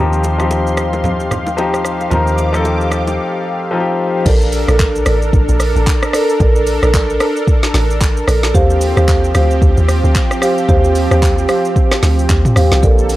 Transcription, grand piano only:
0.00 0.30 F3 medium
0.00 0.30 C4 medium
0.00 0.31 D#4 medium
0.00 0.31 G4 medium
0.38 1.24 F3 medium
0.38 1.24 C4 medium
0.38 1.25 D#4 medium
0.38 1.25 G4 medium
1.57 2.02 F3 medium
1.57 2.03 C4 medium
1.57 2.03 D#4 medium
1.57 2.03 G4 medium
2.10 2.44 F3 medium
2.10 2.45 C4 medium
2.10 2.45 D#4 medium
2.10 2.45 A#4 medium
2.53 3.38 F3 medium
2.53 3.39 C4 medium
2.53 3.39 D#4 medium
2.53 3.40 A4 medium
3.71 4.16 F3 medium
3.71 4.17 C4 medium
3.71 4.17 D#4 medium
3.71 3.81 F4 medium
3.80 4.21 G4 medium

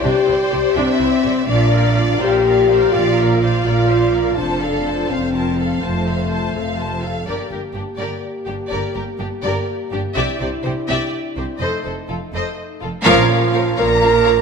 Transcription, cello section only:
0.05 0.13 C3 medium
0.28 0.36 C3 soft
0.53 0.61 C3 soft
0.77 0.85 C3 medium
1.01 1.09 C3 soft
1.25 1.33 C3 medium
1.49 2.12 A#2 medium
2.22 2.85 A#2 medium
2.94 3.57 A#2 medium
3.66 4.29 A#2 medium
4.39 5.02 F2 medium
5.11 5.74 F2 soft
5.82 6.46 F2 soft
6.55 7.18 F2 soft
7.27 7.35 G2 soft
7.51 7.59 G2 soft
7.74 7.82 G2 soft
7.98 8.06 G2 soft
8.47 8.55 G2 soft
8.71 8.79 G2 soft
8.95 9.03 G2 soft
9.19 9.27 G2 soft
9.43 9.51 G2 soft
9.91 9.99 G2 soft
10.16 10.24 C3 medium
10.41 10.49 C3 soft
10.64 10.72 C3 soft
10.88 10.96 C3 medium
11.37 11.45 C3 soft
11.60 11.68 F2 soft
11.85 11.93 F2 soft
12.08 12.16 F2 soft
12.33 12.41 F2 soft
12.82 12.90 F2 soft
13.06 13.67 A#2 loud
13.78 14.42 A#2 medium

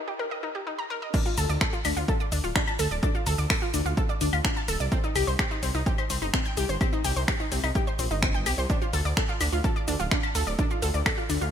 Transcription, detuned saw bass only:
1.38 1.45 D2 medium
1.49 1.57 D2 medium
1.85 1.93 D2 medium
1.97 2.04 D2 medium
2.32 2.40 D2 loud
2.44 2.52 D1 medium
2.79 2.87 D2 medium
2.91 2.99 D1 medium
3.26 3.34 D2 loud
3.38 3.46 D2 medium
3.74 3.82 D2 loud
3.86 3.93 D2 medium
4.21 4.29 D2 loud
4.33 4.41 D2 medium
4.68 4.76 D1 loud
4.80 4.88 C2 medium
5.16 5.23 C2 loud
5.27 5.35 C2 medium
5.63 5.71 C2 medium
5.75 5.82 C2 medium
6.10 6.18 C2 medium
6.22 6.30 G1 medium
6.57 6.65 C2 loud
6.69 6.77 G1 medium
7.04 7.12 C2 loud
7.16 7.24 C2 medium
7.52 7.60 C2 medium
7.64 7.71 C2 medium
7.99 8.07 A#1 loud
8.11 8.48 G1 medium
8.46 8.54 C2 medium
8.58 8.66 C2 medium
8.93 9.01 D2 medium
9.05 9.13 D2 medium
9.40 9.49 D2 medium
9.52 9.60 D2 medium
9.88 9.96 D2 loud
10.00 10.08 D1 medium
10.35 10.43 D2 loud
10.47 10.55 D1 medium
10.82 10.90 D2 medium
10.94 11.02 D2 medium
11.30 11.38 D2 medium
11.41 11.49 D2 medium

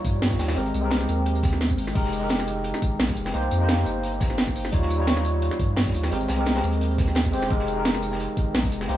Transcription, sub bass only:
0.05 0.20 G2 medium
0.22 0.38 G2 loud
0.39 0.55 D#2 loud
0.57 0.72 G#1 loud
0.74 1.07 C2 loud
1.09 1.78 D#2 loud
1.78 1.94 G#1 loud
1.95 2.72 F1 loud
2.82 2.98 G#1 medium
3.00 3.15 A#1 loud
3.17 3.33 F1 medium
3.34 3.50 C2 medium
3.52 3.85 F2 loud
3.86 4.55 G1 loud
4.56 4.71 G1 medium
4.73 5.50 D#2 loud
5.59 5.75 G2 loud
5.77 5.93 G2 loud
5.94 6.10 D#2 medium
6.12 6.27 G#1 loud
6.29 6.62 C2 loud
6.64 7.34 D#2 loud
7.33 7.49 D#1 loud
7.51 8.27 F1 medium
8.37 8.53 G#1 medium
8.54 8.70 A#1 loud
8.72 8.87 F1 medium
8.89 8.97 C2 loud

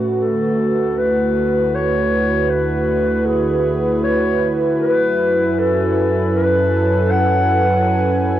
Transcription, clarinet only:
0.21 0.99 A4 medium
0.98 1.77 B4 medium
1.75 2.51 C#5 medium
2.50 3.27 B4 medium
3.26 4.06 G#4 medium
4.04 4.54 C#5 medium
4.79 5.60 B4 medium
5.59 6.35 A4 medium
6.36 7.13 B4 medium
7.11 8.40 F#5 medium

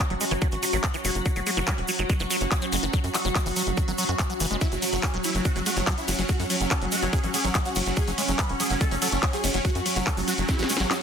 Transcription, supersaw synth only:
4.61 4.67 E4 loud
4.72 4.78 F#3 medium
4.82 4.88 F#3 medium
4.93 4.99 F#3 medium
5.03 5.09 G#4 medium
5.14 5.20 F#3 medium
5.24 5.30 E4 medium
5.35 5.41 F#3 medium
5.45 5.51 F#4 medium
5.56 5.62 F#3 medium
5.66 5.72 F#4 loud
5.77 5.83 F#3 medium
5.87 5.93 F#3 medium
5.98 6.04 E4 medium
6.08 6.14 F#3 medium
6.19 6.25 F#3 medium
6.29 6.35 F#4 loud
6.40 6.46 F#3 medium
6.50 6.56 F#3 medium
6.61 6.67 F#3 medium
6.71 6.77 A4 medium
6.82 6.88 F#3 medium
6.92 6.98 F#4 medium
7.03 7.09 F#3 medium
7.13 7.19 G#4 medium
7.23 7.30 F#3 medium
7.34 7.40 G#4 medium
7.44 7.51 F#3 medium
7.55 7.61 F#3 medium
7.65 7.72 F#4 medium
7.76 7.82 F#3 medium
7.86 7.93 F#3 medium
7.97 8.03 G#4 loud
8.07 8.14 C#4 medium
8.18 8.24 C#4 medium
8.28 8.35 C#4 medium
8.39 8.45 B4 medium
8.49 8.56 C#4 medium
8.60 8.66 G#4 medium
8.70 8.76 C#4 medium
8.81 8.87 A4 medium
8.91 8.97 C#4 medium
9.02 9.08 A4 loud
9.12 9.18 C#4 medium
9.23 9.29 C#4 medium
9.33 9.39 G#4 medium
9.44 9.50 C#4 medium
9.54 9.60 C#4 medium
9.65 9.71 F#4 loud
9.75 9.81 F#3 medium
9.86 9.92 F#3 medium
9.96 10.02 F#3 medium
10.07 10.13 A4 medium
10.17 10.23 F#3 medium
10.28 10.34 F#4 medium
10.38 10.44 F#3 medium
10.49 10.55 E4 medium
10.59 10.65 F#3 medium
10.70 10.76 C#4 loud
10.80 10.86 F#3 medium
10.91 10.97 F#3 medium

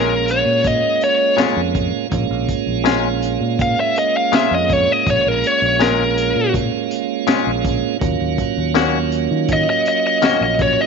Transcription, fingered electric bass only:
0.00 0.42 A#1 medium
0.46 0.80 A#2 medium
1.38 muted fingered electric bass stroke soft
1.56 1.91 F2 medium
2.12 2.29 A#1 loud
2.30 2.47 A#1 medium
2.67 3.37 A#1 medium
3.41 3.75 A#2 medium
4.33 muted fingered electric bass stroke soft
4.51 4.85 F2 medium
5.07 5.24 A#1 medium
5.25 5.42 A#1 medium
5.62 6.32 A#1 medium
6.36 6.70 A#2 medium
7.28 muted fingered electric bass stroke soft
7.47 7.81 A#1 medium
8.01 8.19 D#2 medium
8.21 8.37 D#2 medium
8.57 9.27 D#2 medium
9.31 9.65 D#3 medium
10.23 muted fingered electric bass stroke soft
10.41 10.75 A#1 medium

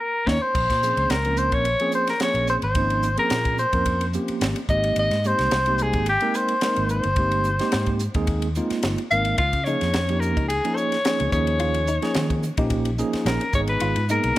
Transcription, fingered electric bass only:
0.27 0.38 D#2 medium
0.55 0.66 A#1 loud
0.70 0.91 A#2 medium
0.97 1.07 C#2 medium
1.10 1.52 C#2 medium
1.52 1.74 A#1 medium
2.34 2.56 A#1 medium
2.63 3.16 G#1 medium
3.31 3.64 A#2 medium
3.73 4.16 F2 medium
4.29 muted fingered electric bass stroke soft
4.41 4.53 G#1 medium
4.69 4.91 G#1 medium
4.96 5.08 G#1 medium
5.11 5.33 G#2 medium
5.39 5.49 C2 medium
5.52 5.95 C2 medium
5.94 6.16 G#1 medium
6.77 6.99 G#1 medium
7.05 7.58 G1 medium
7.74 8.07 G#2 medium
8.15 8.59 D#2 medium
8.71 muted fingered electric bass stroke soft
8.84 8.95 G1 medium
9.12 9.33 G#1 medium
9.39 9.50 C#2 loud
9.53 9.75 C#3 medium
9.82 9.92 F2 medium
9.95 10.37 F2 medium
10.37 10.59 C#2 medium
11.21 11.30 C#2 medium
11.32 11.97 D#2 medium
12.16 12.49 D#3 medium
12.58 13.01 A#1 medium
13.14 muted fingered electric bass stroke soft
13.25 13.37 A#1 medium
13.54 13.75 G#1 medium
13.82 13.93 G#1 medium
13.97 14.18 G#2 medium
14.24 14.34 B1 medium

